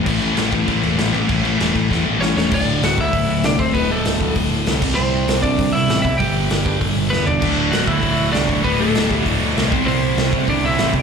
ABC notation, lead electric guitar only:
X:1
M:4/4
L:1/8
Q:1/4=196
K:Amix
V:1 name="Lead electric guitar"
z8 | z6 [Cc] [Cc] | [K:Dmix] [Dd]2 [Ff] [Ee]3 [Dd] [Cc] | [B,B] [A,A]3 z4 |
[Cc]3 [Dd]2 [Ee]2 [Ee] | [Gg]4 z2 [B,B] [Dd]- | [Dd]2 [Ff] [Ee]3 [Dd]2 | [B,B] [A,A]3 z4 |
[Cc]4 [Dd] [Ee]2 z |]